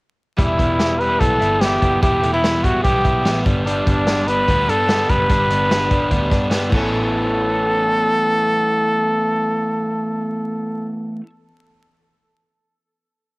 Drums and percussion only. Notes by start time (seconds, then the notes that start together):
0.38 kick, closed hi-hat
0.59 kick, closed hi-hat
0.80 snare, closed hi-hat
1.00 closed hi-hat
1.21 kick, closed hi-hat
1.42 closed hi-hat
1.61 snare, closed hi-hat
1.82 kick, closed hi-hat
2.03 kick, closed hi-hat
2.23 closed hi-hat
2.44 snare, closed hi-hat
2.64 kick, closed hi-hat
2.85 kick, closed hi-hat
3.05 kick, closed hi-hat
3.26 snare, closed hi-hat
3.46 kick, closed hi-hat
3.67 closed hi-hat
3.87 kick, closed hi-hat
4.07 snare, closed hi-hat
4.28 closed hi-hat
4.48 kick, closed hi-hat
4.69 closed hi-hat
4.89 snare, closed hi-hat
5.10 kick, closed hi-hat
5.29 kick, closed hi-hat
5.50 closed hi-hat
5.71 snare, closed hi-hat
5.91 kick, closed hi-hat
6.11 kick, closed hi-hat
6.31 kick, snare, closed hi-hat
6.51 snare, closed hi-hat
6.72 kick, crash